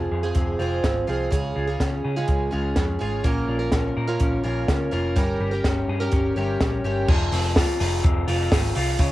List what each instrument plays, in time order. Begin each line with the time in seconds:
Already playing: clean electric guitar F3 C4 F4, twelve-string acoustic guitar C4 F4 G#4
0.11 picked electric bass F2, clean electric guitar G#4
0.23 twelve-string acoustic guitar F3 C4 F4 G#4
0.35 picked electric bass F1, clean electric guitar C4, kick, closed hi-hat
0.59 picked electric bass F1, twelve-string acoustic guitar F3 C4 F4 G#4, clean electric guitar F4
0.83 picked electric bass G#1, clean electric guitar C4, kick, snare, closed hi-hat
1.07 picked electric bass C2, twelve-string acoustic guitar F3 C4 F4 G#4, clean electric guitar F4
1.30 picked electric bass C#2, clean electric guitar C#3, twelve-string acoustic guitar G#3 C#4 F4 G#4, kick, closed hi-hat
1.56 picked electric bass C#2, clean electric guitar F4
1.67 twelve-string acoustic guitar C#4 F4 G#4
1.80 picked electric bass C#2, clean electric guitar C#4, kick, snare, closed hi-hat
2.04 picked electric bass C#3, clean electric guitar G#4
2.16 twelve-string acoustic guitar C#3 G#3 C#4 F4 G#4
2.28 picked electric bass C#2, clean electric guitar G#3, kick, closed hi-hat
2.51 picked electric bass C#2, twelve-string acoustic guitar G#3 C#4 F4 G#4, clean electric guitar F4
2.76 picked electric bass F2, clean electric guitar C#4, kick, snare, closed hi-hat
2.99 picked electric bass G#1, twelve-string acoustic guitar G#3 C#4 F4 G#4, clean electric guitar F4
3.24 picked electric bass A#1, twelve-string acoustic guitar A#3 C#4 F4 A#4, clean electric guitar A#3, kick, closed hi-hat
3.48 picked electric bass A#1, clean electric guitar F4
3.59 twelve-string acoustic guitar C#4 F4 A#4
3.72 picked electric bass A#1, clean electric guitar C#4, kick, snare, closed hi-hat
3.97 picked electric bass A#2, clean electric guitar A#4
4.08 twelve-string acoustic guitar A#3 C#4 F4 A#4
4.20 picked electric bass A#1, clean electric guitar C#4, kick, closed hi-hat
4.44 picked electric bass A#1, twelve-string acoustic guitar A#3 C#4 F4 A#4, clean electric guitar F4
4.68 picked electric bass C#2, clean electric guitar C#4, kick, snare, closed hi-hat
4.91 picked electric bass F1, twelve-string acoustic guitar A#3 C#4 F4 A#4, clean electric guitar F4
5.16 picked electric bass G1, twelve-string acoustic guitar G3 C#4 G4 A#4, clean electric guitar G3, kick, closed hi-hat
5.40 picked electric bass G1, clean electric guitar G4
5.51 twelve-string acoustic guitar C#4 G4 A#4
5.64 picked electric bass G1, clean electric guitar C#4, kick, snare, closed hi-hat
5.88 picked electric bass G2, clean electric guitar G#4
6.00 twelve-string acoustic guitar G3 C#4 G4 A#4, clean electric guitar A#4
6.12 picked electric bass G1, clean electric guitar C#4, kick, closed hi-hat
6.36 picked electric bass G1, twelve-string acoustic guitar G3 C#4 G4 A#4, clean electric guitar G4
6.61 picked electric bass A#1, clean electric guitar C#4, kick, snare, closed hi-hat
6.84 picked electric bass G1, twelve-string acoustic guitar G3 C#4 G4 A#4, clean electric guitar G4
7.08 picked electric bass F1, clean electric guitar F3 G#4, kick, crash
7.32 picked electric bass F1, clean electric guitar C4, hi-hat pedal, open hi-hat
7.56 clean electric guitar F4, kick, snare, hi-hat pedal, open hi-hat
7.80 picked electric bass F1, clean electric guitar G#4, hi-hat pedal, open hi-hat
8.04 picked electric bass F1, clean electric guitar C4, kick, hi-hat pedal, open hi-hat
8.27 picked electric bass F1, clean electric guitar F4, hi-hat pedal, open hi-hat
8.52 picked electric bass G#1, clean electric guitar G#4, kick, snare, hi-hat pedal, open hi-hat
8.75 picked electric bass C2, clean electric guitar F4, hi-hat pedal, open hi-hat
8.99 picked electric bass C#2, clean electric guitar C#3 G#4, kick, hi-hat pedal, open hi-hat